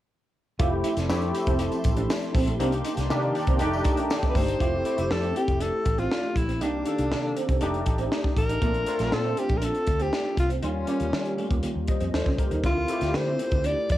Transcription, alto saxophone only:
4.30 4.38 B4 medium
4.37 5.13 C5 loud
5.12 5.36 A4 medium
5.37 5.63 G4 medium
5.62 6.00 A4 medium
5.99 6.38 F4 medium
6.37 6.61 E4 medium
6.63 7.58 D4 medium
8.38 9.15 A#4 loud
9.14 9.40 A4 medium
9.39 9.59 G4 medium
9.57 9.66 A#4 medium
9.65 10.03 A4 medium
10.02 10.39 G4 medium
10.39 10.50 F4 medium
10.64 11.60 C#4 medium
12.66 13.18 F4 medium
13.16 13.68 C5 medium
13.66 13.91 D5 medium
13.92 13.98 D5 medium

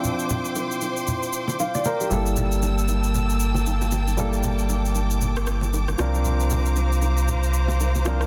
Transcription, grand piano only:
0.00 1.81 F3 medium
0.00 1.81 C4 medium
0.00 1.82 D4 medium
0.00 1.82 E4 medium
1.60 1.74 F5 medium
1.75 1.85 D5 medium
1.86 2.00 A#4 medium
2.01 2.25 G4 medium
2.10 4.14 G3 medium
2.10 4.14 A#3 medium
2.10 4.14 E4 medium
2.10 4.15 A4 medium
4.17 5.95 G3 medium
4.17 5.95 A#3 medium
4.17 5.96 E4 medium
4.17 5.96 A4 medium
5.98 8.01 F3 medium
5.98 8.02 C4 medium
5.98 8.02 D4 medium
5.98 8.03 A#4 medium
8.05 8.27 F3 medium
8.05 8.27 C4 medium
8.05 8.27 D4 medium
8.05 8.27 A#4 medium

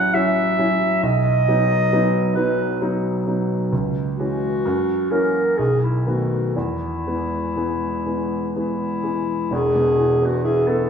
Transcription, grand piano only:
0.00 1.06 A1 medium
0.00 0.14 F#3 medium
0.00 0.15 C#4 medium
0.00 0.15 E4 medium
0.14 0.55 F#3 medium
0.14 0.55 C#4 medium
0.14 0.55 E4 medium
0.59 1.00 F#3 soft
0.59 0.99 C#4 medium
0.59 1.00 E4 medium
1.03 1.46 B1 medium
1.48 1.88 F#3 medium
1.48 1.89 B3 soft
1.48 1.89 D#4 medium
1.93 2.33 F#3 medium
1.93 2.33 B3 medium
1.93 2.33 D#4 medium
2.37 2.78 F#3 medium
2.37 2.78 B3 soft
2.37 2.78 D#4 medium
2.82 3.23 F#3 medium
2.82 3.23 B3 medium
2.82 3.23 D#4 medium
3.27 3.68 F#3 soft
3.27 3.68 B3 soft
3.27 3.68 D#4 soft
3.73 4.16 C#2 medium
4.19 4.61 E3 medium
4.19 4.61 G#3 soft
4.19 4.61 C#4 soft
4.65 5.11 F#2 medium
5.11 5.55 E3 soft
5.11 5.55 A#3 soft
5.11 5.55 C#4 medium
5.59 6.05 B1 medium
6.07 6.52 D#3 soft
6.07 6.53 A3 soft
6.07 6.53 B3 soft
6.56 7.05 E2 medium
7.07 7.53 E3 soft
7.07 7.53 G#3 soft
7.07 7.54 B3 soft
7.56 8.02 E3 soft
7.56 8.03 G#3 soft
7.56 8.03 B3 soft
8.06 8.51 E3 soft
8.06 8.51 G#3 soft
8.06 8.51 B3 soft
8.55 9.00 E3 soft
8.55 9.01 G#3 soft
8.55 9.01 B3 soft
9.04 9.48 E3 soft
9.04 9.48 G#3 soft
9.04 9.48 B3 soft
9.51 10.90 E1 medium
9.51 10.90 E2 medium
9.76 10.12 B2 medium
9.98 10.35 E3 medium
10.22 10.58 B3 soft
10.45 10.81 E4 medium
10.67 10.90 B3 medium

